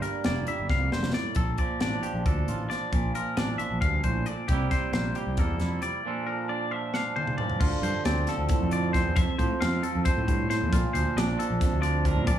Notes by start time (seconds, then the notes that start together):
Already playing: G2 A#3
0.02 G3 A#4, closed hi-hat
0.24 F1 A#3 D5, snare, closed hi-hat
0.47 G3 E5, closed hi-hat
0.59 G1
0.69 C2 F2 F5, kick, snare
0.91 F1 G2 C5, snare
1.03 snare
1.13 A2 D5, snare
1.35 A#1 A#2 A4, kick, closed hi-hat
1.58 F3 D5, kick, closed hi-hat
1.80 A1 D4 D5, snare, closed hi-hat
2.03 F3 G4, closed hi-hat
2.13 A#1
2.26 D2 D4 A4, kick, closed hi-hat
2.47 A1 F4, closed hi-hat
2.70 F3 D5, snare, closed hi-hat
2.92 A#1 A#2, kick, closed hi-hat
3.15 F3 A#4, closed hi-hat
3.37 A1 D4 D5, snare, closed hi-hat
3.58 F3 E5, closed hi-hat
3.70 A#1
3.81 D2 G2 F5, kick, closed hi-hat
4.04 A#1 A2 C5, kick, closed hi-hat
4.26 A#2 D5, closed hi-hat
4.48 C2 C3 G3 A#3 G4, kick, closed hi-hat
4.52 E4 G4
4.71 G3 C5, kick, snare, closed hi-hat
4.92 A#1 A#3 C5, snare, closed hi-hat
5.15 G3 G4, closed hi-hat
5.27 C2
5.37 E2 A#3 A4, kick, closed hi-hat
5.60 F2 E4, snare, closed hi-hat
5.82 G3 D5, closed hi-hat
6.06 A#2 F3 D4 F4 A4
6.27 F3 A#4
6.49 D4 D5
6.71 F3 E5
6.94 D4 F5, snare
7.16 F4 C5, high tom
7.27 mid tom
7.38 F3 D5, mid tom
7.50 floor tom
7.60 D2 D3 F4, kick, crash
7.82 G2 F3 C5, closed hi-hat
8.05 D2 C4 D5, snare, closed hi-hat
8.27 F3 A4, snare, closed hi-hat
8.38 D2
8.49 A2, kick, snare, closed hi-hat
8.61 F2
8.71 F3 D5, closed hi-hat
8.93 C4 C5, kick, snare, closed hi-hat
9.05 E2
9.16 F2 E5, kick, closed hi-hat
9.38 A2 F3 C5, kick, closed hi-hat
9.61 F2 C4 F5, snare, closed hi-hat
9.83 F3 A4, closed hi-hat
9.95 F2
10.05 F2 C5, kick, closed hi-hat
10.17 A2
10.27 G2, kick, closed hi-hat
10.50 A2 C5, snare, closed hi-hat
10.62 F2
10.72 A#1 A#2 F4, kick, closed hi-hat
10.93 D2 F3 C5, closed hi-hat
11.16 A#1 D4 D5, snare, closed hi-hat
11.38 F3 A4, closed hi-hat
11.50 A#1
11.60 F2, kick, snare, closed hi-hat
11.72 D2
11.81 F3 D5, closed hi-hat
12.05 D4 A#4, kick, closed hi-hat
12.16 A#2
12.27 A#1 A#2 D5, kick, closed hi-hat